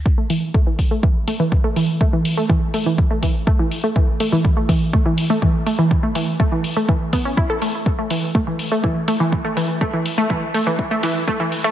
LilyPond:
<<
  \new Staff \with { instrumentName = "Synth pluck" } { \time 4/4 \key e \dorian \tempo 4 = 123 r16 a16 e16 r16 a16 e16 r16 a16 e16 r16 a16 e16 r16 a16 e16 r16 | a16 e16 r16 a16 e16 r16 a16 e16 r16 a16 e16 r16 a16 e16 r16 a16 | e16 r16 a16 e16 r16 a16 e16 r16 a16 e16 r16 a16 e16 r16 a16 e16 | r16 a16 e16 r16 a16 e16 r16 a16 e16 r16 b16 cis'16 e'16 a'16 a16 r16 |
r16 a16 e16 r16 a16 e16 r16 a16 e16 r16 a16 e16 r16 a16 e16 r16 | a16 e16 r16 a16 e16 r16 a16 e16 r16 a16 e16 r16 a16 e16 r16 a16 | }
  \new DrumStaff \with { instrumentName = "Drums" } \drummode { \time 4/4 bd8 hho8 bd8 <hho bd>8 bd8 hho8 bd8 hho8 | bd8 hho8 bd8 hho8 bd8 <hho bd>8 bd8 hho8 | bd8 hho8 bd8 <hho bd>8 bd8 hho8 bd8 hho8 | bd8 hho8 bd8 hho8 bd8 <hho bd>8 bd8 hho8 |
bd8 hho8 bd8 hho8 bd8 hho8 bd8 hho8 | bd8 hho8 bd8 hho8 bd8 hho8 bd8 hho8 | }
>>